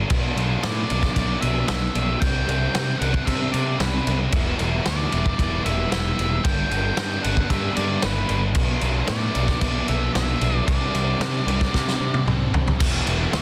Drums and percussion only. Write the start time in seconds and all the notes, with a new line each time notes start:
0.10 kick, crash
0.37 crash
0.64 snare, crash
0.90 crash
1.02 kick, snare
1.16 kick, crash
1.42 crash
1.68 snare, crash
1.95 crash
2.22 kick, crash
2.49 crash
2.75 snare, crash
3.02 crash
3.14 kick
3.27 kick, crash
3.54 crash
3.80 snare, crash
4.07 crash
4.32 kick, crash
4.59 crash
4.86 snare, crash
5.12 crash
5.26 kick
5.39 kick, crash
5.66 crash
5.92 snare, crash
6.19 crash
6.45 kick, crash
6.71 crash
6.97 snare, crash
7.24 crash
7.37 kick
7.50 kick, crash
7.77 crash
8.02 snare, crash
8.29 crash
8.55 kick, crash
8.81 crash
9.08 snare, crash
9.35 crash
9.48 kick, snare
9.61 kick, crash
9.88 crash
10.15 snare, crash
10.41 crash
10.68 kick, crash
10.95 crash
11.21 snare, crash
11.48 crash
11.61 kick, snare
11.74 kick, snare
11.88 snare
12.14 high tom
12.28 mid tom
12.54 floor tom
12.68 floor tom
12.80 kick, crash
13.07 crash
13.33 snare, crash